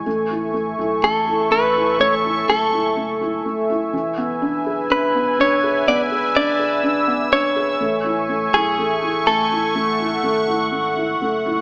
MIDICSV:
0, 0, Header, 1, 5, 480
1, 0, Start_track
1, 0, Key_signature, 3, "major"
1, 0, Tempo, 967742
1, 29, Time_signature, 4, 2, 24, 8
1, 5760, End_track
2, 0, Start_track
2, 0, Title_t, "Analog synth pad"
2, 0, Program_c, 0, 89
2, 0, Note_on_c, 0, 80, 60
2, 28, Note_on_c, 0, 69, 61
2, 28, Note_on_c, 0, 76, 58
2, 29, Note_on_c, 0, 85, 76
2, 1929, Note_off_c, 0, 69, 0
2, 1930, Note_off_c, 0, 85, 0
2, 1931, Note_off_c, 0, 80, 0
2, 1950, Note_on_c, 0, 71, 60
2, 1952, Note_on_c, 0, 80, 58
2, 2907, Note_on_c, 0, 88, 75
2, 3850, Note_off_c, 0, 71, 0
2, 3851, Note_off_c, 0, 80, 0
2, 3859, Note_off_c, 0, 88, 0
2, 3869, Note_on_c, 0, 57, 61
2, 3869, Note_on_c, 0, 85, 77
2, 3870, Note_on_c, 0, 80, 57
2, 4820, Note_off_c, 0, 80, 0
2, 4831, Note_on_c, 0, 78, 58
2, 5760, Note_off_c, 0, 57, 0
2, 5760, Note_off_c, 0, 76, 0
2, 5760, Note_off_c, 0, 78, 0
2, 5760, Note_off_c, 0, 85, 0
2, 5760, End_track
3, 0, Start_track
3, 0, Title_t, "Clean electric guitar"
3, 0, Program_c, 1, 27
3, 516, Note_on_c, 1, 69, 55
3, 751, Note_off_c, 1, 69, 0
3, 753, Note_on_c, 1, 71, 63
3, 994, Note_off_c, 1, 71, 0
3, 996, Note_on_c, 1, 73, 82
3, 1060, Note_off_c, 1, 73, 0
3, 1238, Note_on_c, 1, 69, 58
3, 1694, Note_off_c, 1, 69, 0
3, 2439, Note_on_c, 1, 71, 65
3, 2681, Note_off_c, 1, 71, 0
3, 2683, Note_on_c, 1, 73, 69
3, 2915, Note_off_c, 1, 73, 0
3, 2917, Note_on_c, 1, 74, 81
3, 2981, Note_off_c, 1, 74, 0
3, 3157, Note_on_c, 1, 74, 75
3, 3613, Note_off_c, 1, 74, 0
3, 3634, Note_on_c, 1, 73, 81
3, 4234, Note_off_c, 1, 73, 0
3, 4236, Note_on_c, 1, 68, 72
3, 4573, Note_off_c, 1, 68, 0
3, 4598, Note_on_c, 1, 69, 55
3, 5294, Note_off_c, 1, 69, 0
3, 5760, End_track
4, 0, Start_track
4, 0, Title_t, "Felt piano"
4, 0, Program_c, 2, 0
4, 0, Control_c, 2, 64, 127
4, 31, Note_on_c, 2, 57, 55
4, 36, Control_c, 2, 64, 0
4, 117, Control_c, 2, 64, 127
4, 152, Note_on_c, 2, 64, 40
4, 259, Note_off_c, 2, 57, 0
4, 267, Note_on_c, 2, 57, 45
4, 383, Note_off_c, 2, 64, 0
4, 390, Note_on_c, 2, 64, 36
4, 502, Note_off_c, 2, 57, 0
4, 510, Note_on_c, 2, 57, 42
4, 623, Note_off_c, 2, 64, 0
4, 630, Note_on_c, 2, 64, 35
4, 741, Note_off_c, 2, 57, 0
4, 748, Note_on_c, 2, 57, 42
4, 863, Note_off_c, 2, 64, 0
4, 871, Note_on_c, 2, 64, 37
4, 982, Note_off_c, 2, 57, 0
4, 990, Note_on_c, 2, 57, 56
4, 1105, Note_off_c, 2, 64, 0
4, 1112, Note_on_c, 2, 64, 39
4, 1224, Note_off_c, 2, 57, 0
4, 1232, Note_on_c, 2, 57, 45
4, 1344, Note_off_c, 2, 64, 0
4, 1351, Note_on_c, 2, 64, 38
4, 1464, Note_off_c, 2, 57, 0
4, 1471, Note_on_c, 2, 57, 42
4, 1586, Note_off_c, 2, 64, 0
4, 1593, Note_on_c, 2, 64, 38
4, 1705, Note_off_c, 2, 57, 0
4, 1713, Note_on_c, 2, 57, 44
4, 1826, Note_off_c, 2, 64, 0
4, 1833, Note_on_c, 2, 64, 43
4, 1944, Note_off_c, 2, 57, 0
4, 1948, Note_off_c, 2, 64, 0
4, 1950, Note_on_c, 2, 52, 49
4, 1956, Control_c, 2, 64, 0
4, 2041, Control_c, 2, 64, 127
4, 2071, Note_on_c, 2, 59, 39
4, 2190, Note_on_c, 2, 62, 47
4, 2313, Note_on_c, 2, 68, 42
4, 2423, Note_off_c, 2, 62, 0
4, 2431, Note_on_c, 2, 62, 46
4, 2546, Note_off_c, 2, 59, 0
4, 2553, Note_on_c, 2, 59, 37
4, 2665, Note_off_c, 2, 62, 0
4, 2672, Note_on_c, 2, 62, 47
4, 2788, Note_off_c, 2, 68, 0
4, 2795, Note_on_c, 2, 68, 43
4, 2906, Note_off_c, 2, 59, 0
4, 2913, Note_on_c, 2, 59, 58
4, 3026, Note_off_c, 2, 68, 0
4, 3033, Note_on_c, 2, 68, 40
4, 3145, Note_off_c, 2, 62, 0
4, 3152, Note_on_c, 2, 62, 52
4, 3262, Note_off_c, 2, 68, 0
4, 3270, Note_on_c, 2, 68, 38
4, 3381, Note_off_c, 2, 62, 0
4, 3388, Note_on_c, 2, 62, 45
4, 3501, Note_off_c, 2, 59, 0
4, 3509, Note_on_c, 2, 59, 45
4, 3623, Note_off_c, 2, 62, 0
4, 3630, Note_on_c, 2, 62, 50
4, 3743, Note_off_c, 2, 68, 0
4, 3750, Note_on_c, 2, 68, 43
4, 3850, Note_off_c, 2, 52, 0
4, 3858, Note_off_c, 2, 59, 0
4, 3863, Note_off_c, 2, 62, 0
4, 3866, Note_off_c, 2, 68, 0
4, 3871, Note_on_c, 2, 57, 57
4, 3875, Control_c, 2, 64, 0
4, 3955, Control_c, 2, 64, 127
4, 3989, Note_on_c, 2, 64, 46
4, 4106, Note_off_c, 2, 57, 0
4, 4113, Note_on_c, 2, 57, 47
4, 4227, Note_off_c, 2, 64, 0
4, 4235, Note_on_c, 2, 64, 41
4, 4349, Note_off_c, 2, 57, 0
4, 4356, Note_on_c, 2, 57, 46
4, 4467, Note_off_c, 2, 64, 0
4, 4474, Note_on_c, 2, 64, 36
4, 4590, Note_off_c, 2, 57, 0
4, 4597, Note_on_c, 2, 57, 47
4, 4710, Note_off_c, 2, 64, 0
4, 4718, Note_on_c, 2, 64, 45
4, 4829, Note_off_c, 2, 57, 0
4, 4836, Note_on_c, 2, 57, 58
4, 4951, Note_off_c, 2, 64, 0
4, 4959, Note_on_c, 2, 64, 42
4, 5069, Note_off_c, 2, 57, 0
4, 5077, Note_on_c, 2, 57, 53
4, 5190, Note_off_c, 2, 64, 0
4, 5197, Note_on_c, 2, 64, 42
4, 5309, Note_off_c, 2, 57, 0
4, 5317, Note_on_c, 2, 57, 47
4, 5431, Note_off_c, 2, 64, 0
4, 5438, Note_on_c, 2, 64, 41
4, 5556, Note_off_c, 2, 57, 0
4, 5563, Note_on_c, 2, 57, 50
4, 5676, Note_off_c, 2, 64, 0
4, 5683, Note_on_c, 2, 64, 48
4, 5760, Note_off_c, 2, 57, 0
4, 5760, Note_off_c, 2, 64, 0
4, 5760, End_track
5, 0, Start_track
5, 0, Title_t, "Sub bass"
5, 0, Program_c, 3, 38
5, 30, Note_on_c, 3, 33, 83
5, 370, Note_off_c, 3, 33, 0
5, 389, Note_on_c, 3, 35, 88
5, 501, Note_off_c, 3, 35, 0
5, 510, Note_on_c, 3, 33, 91
5, 1210, Note_off_c, 3, 33, 0
5, 1231, Note_on_c, 3, 30, 82
5, 1690, Note_off_c, 3, 30, 0
5, 1709, Note_on_c, 3, 26, 72
5, 1932, Note_off_c, 3, 26, 0
5, 1949, Note_on_c, 3, 28, 96
5, 2289, Note_off_c, 3, 28, 0
5, 2310, Note_on_c, 3, 26, 79
5, 2421, Note_off_c, 3, 26, 0
5, 2432, Note_on_c, 3, 28, 88
5, 3011, Note_off_c, 3, 28, 0
5, 3149, Note_on_c, 3, 28, 85
5, 3849, Note_off_c, 3, 28, 0
5, 3869, Note_on_c, 3, 33, 93
5, 4209, Note_off_c, 3, 33, 0
5, 4230, Note_on_c, 3, 35, 77
5, 4350, Note_on_c, 3, 33, 90
5, 4358, Note_off_c, 3, 35, 0
5, 5050, Note_off_c, 3, 33, 0
5, 5071, Note_on_c, 3, 32, 83
5, 5530, Note_off_c, 3, 32, 0
5, 5551, Note_on_c, 3, 30, 73
5, 5760, Note_off_c, 3, 30, 0
5, 5760, End_track
0, 0, End_of_file